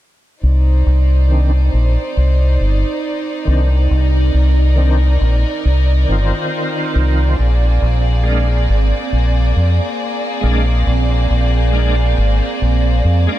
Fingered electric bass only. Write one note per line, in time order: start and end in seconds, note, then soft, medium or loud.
0.43 0.82 C2 medium
0.86 1.70 C2 medium
1.73 1.95 A#1 medium
2.17 2.56 C2 medium
2.60 2.82 G1 medium
3.47 3.86 C2 medium
3.91 4.30 C2 medium
4.34 5.17 C2 medium
5.21 5.43 A#1 medium
5.65 6.04 C2 medium
6.09 6.31 G1 medium
6.95 7.34 C2 medium
7.39 7.78 A#1 medium
7.82 8.65 A#1 medium
8.69 8.91 G#1 medium
9.12 9.51 A#1 medium
9.56 9.78 F2 medium
10.43 10.82 A#1 medium
10.87 11.26 A#1 medium
11.30 12.13 A#1 medium
12.18 12.39 G#1 medium
12.62 13.00 A#1 medium
13.05 13.26 F2 medium